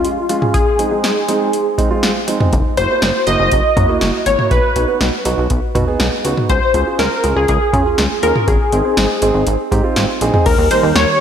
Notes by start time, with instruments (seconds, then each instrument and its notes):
Already playing: grand piano G#3 C#4 F4, analog polysynth F4
0.05 closed hi-hat
0.29 grand piano G#3 C#4 F4, closed hi-hat
0.42 grand piano G#3 C#4 G#4, mid tom
0.54 analog polysynth G#4, kick, closed hi-hat
0.79 grand piano G#3 C4 D#4, closed hi-hat
0.91 grand piano G#3 C4 D#4
1.04 snare, closed hi-hat
1.29 grand piano G#3 C4 D#4, closed hi-hat
1.53 closed hi-hat
1.78 grand piano G#3 C4 D#4, kick, closed hi-hat
1.91 grand piano G#3 C4 F4
2.03 snare, closed hi-hat
2.28 grand piano G#3 C4 D#4, closed hi-hat
2.40 grand piano G#3 C4 D#4, mid tom
2.53 analog synth bass F#1, kick, closed hi-hat
2.77 analog synth bass F#1, grand piano A#3 E4 F#4, analog polysynth C5, closed hi-hat
2.90 grand piano A#3 E4 F#4
3.02 analog synth bass F#1, snare, closed hi-hat
3.27 analog synth bass F#1, grand piano A#3 E4 F#4, analog polysynth D#5, closed hi-hat
3.40 analog synth bass F#1
3.52 analog synth bass F#1, kick, closed hi-hat
3.76 analog synth bass F#2, grand piano A#3 E4 F#4, kick, closed hi-hat, mid tom
3.89 grand piano A#3 E4 F#4
4.01 analog synth bass F#1, snare, closed hi-hat
4.26 analog synth bass G#1, grand piano A#3 E4 F#4, analog polysynth C#5, closed hi-hat
4.39 grand piano A#3 E4 F#4, mid tom
4.51 analog synth bass B1, analog polysynth B4, kick, closed hi-hat
4.76 analog synth bass B1, grand piano B3 D#4 F#4, closed hi-hat
4.88 grand piano B3 D#4 F#4
5.01 analog synth bass B1, snare, closed hi-hat
5.25 analog synth bass B1, grand piano B3 D#4 F#4, closed hi-hat
5.38 analog synth bass B1
5.50 analog synth bass B1, kick, closed hi-hat
5.75 analog synth bass B2, grand piano B3 D#4 F#4, kick, closed hi-hat, mid tom
5.88 grand piano B3 D#4 G#4
6.00 analog synth bass B1, snare, closed hi-hat
6.25 analog synth bass C#2, grand piano B3 D#4 F#4, closed hi-hat
6.37 grand piano B3 D#4 F#4, mid tom
6.49 analog synth bass C#2, analog polysynth C5, kick, closed hi-hat
6.74 analog synth bass C#2, grand piano C#4 F4 G#4, closed hi-hat
6.87 grand piano C#4 F4 G#4
6.99 analog synth bass C#2, analog polysynth A#4, snare, closed hi-hat
7.24 analog synth bass C#2, grand piano C#4 F4 G#4, closed hi-hat
7.36 analog synth bass C#2, analog polysynth G#4
7.48 analog synth bass C#2, analog polysynth G#4, kick, closed hi-hat
7.73 analog synth bass C#3, grand piano C#4 F4 G#4, kick, closed hi-hat, mid tom
7.86 grand piano C#4 F4 G#4
7.98 analog synth bass C#2, snare, closed hi-hat
8.23 analog synth bass D#2, grand piano C#4 F4 G#4, analog polysynth A#4, closed hi-hat
8.35 grand piano C#4 F4 G#4, mid tom
8.48 analog synth bass G#1, analog polysynth G#4, kick, closed hi-hat
8.72 analog synth bass G#1, grand piano C4 D#4 G#4, closed hi-hat
8.85 grand piano C4 D#4 G#4
8.97 analog synth bass G#1, snare, closed hi-hat
9.22 analog synth bass G#1, grand piano C4 D#4 G#4, closed hi-hat
9.34 analog synth bass G#1
9.47 analog synth bass G#1, closed hi-hat
9.72 analog synth bass G#2, grand piano C4 D#4 G4, kick, closed hi-hat
9.84 grand piano C4 D#4 F4
9.96 analog synth bass G#1, snare, closed hi-hat
10.21 analog synth bass A#1, grand piano C4 D#4 G#4, closed hi-hat
10.34 grand piano C4 D#4 G#4, mid tom
10.46 analog synth bass D#2, analog synth pad D#3 G3 A#3 G4, analog polysynth A#4, kick, closed hi-hat, crash
10.58 analog synth bass D#2
10.71 grand piano A#3 D#4 G4 A#4, analog polysynth C5, closed hi-hat
10.83 analog synth bass D#2
10.96 analog synth bass D#2, analog polysynth C#5, snare, closed hi-hat